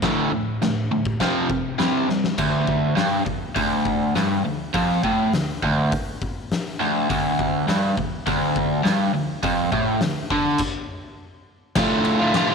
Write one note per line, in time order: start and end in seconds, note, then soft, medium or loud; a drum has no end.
0.02 0.30 D2 medium
0.02 0.31 A2 medium
0.02 0.31 D3 medium
0.02 kick loud
0.02 snare loud
0.02 crash medium
0.31 0.58 D2 medium
0.31 0.59 A2 medium
0.62 0.88 D2 medium
0.62 0.89 A2 medium
0.62 snare loud
0.62 crash medium
0.91 1.18 D2 medium
0.91 1.18 A2 medium
1.05 kick medium
1.20 1.47 F2 loud
1.20 1.48 C3 medium
1.20 1.49 F3 loud
1.20 kick medium
1.20 snare loud
1.20 crash medium
1.48 1.76 F2 medium
1.48 1.76 C3 medium
1.48 kick medium
1.78 2.07 C3 loud
1.78 2.07 G3 loud
1.78 2.08 C4 loud
1.78 snare loud
1.78 crash medium
2.08 2.35 C3 medium
2.08 2.35 G3 medium
2.08 snare medium
2.24 snare medium
2.38 2.96 D2 loud
2.38 kick loud
2.38 crash loud
2.67 kick medium
2.96 3.25 G2 loud
2.96 snare loud
2.96 open hi-hat medium
3.25 3.50 D2 medium
3.25 kick medium
3.56 4.14 D2 loud
3.56 kick loud
3.56 open hi-hat medium
3.85 kick medium
4.15 4.44 G2 loud
4.15 snare loud
4.15 open hi-hat medium
4.45 4.69 D2 medium
4.74 5.03 F2 loud
4.74 kick loud
4.74 open hi-hat medium
5.03 5.33 A2 loud
5.03 kick medium
5.33 5.58 D2 medium
5.33 snare loud
5.33 open hi-hat medium
5.63 5.92 D2 loud
5.63 kick medium
5.92 kick loud
5.92 open hi-hat medium
6.22 kick medium
6.51 snare loud
6.51 open hi-hat medium
6.81 7.09 D2 loud
7.10 7.67 D2 loud
7.10 kick loud
7.10 open hi-hat medium
7.39 kick medium
7.68 7.96 G2 loud
7.68 snare loud
7.68 open hi-hat medium
7.97 8.21 D2 medium
7.97 kick medium
8.27 8.84 D2 loud
8.27 kick loud
8.27 open hi-hat medium
8.56 kick medium
8.84 9.13 G2 loud
8.84 snare loud
8.84 open hi-hat medium
9.14 9.38 D2 medium
9.43 9.72 F2 loud
9.43 kick loud
9.43 open hi-hat medium
9.72 10.01 A2 medium
9.72 kick medium
10.01 10.26 D2 medium
10.01 snare loud
10.01 open hi-hat medium
10.30 10.60 D3 loud
10.30 kick medium
10.58 kick loud
10.58 crash loud
11.75 12.33 D2 medium
11.75 12.33 A2 loud
11.75 12.22 D3 loud
11.75 12.21 A3 loud
11.75 12.19 F4 loud
11.75 kick loud
11.75 snare loud
11.75 crash loud
12.05 ride medium
12.19 12.35 D3 medium
12.19 12.36 A3 medium
12.19 12.36 F4 medium
12.34 12.55 D2 medium
12.34 12.55 A2 loud
12.34 12.53 D3 medium
12.34 12.51 A3 loud
12.34 12.49 F4 loud
12.34 snare loud
12.34 ride loud
12.50 12.55 F4 medium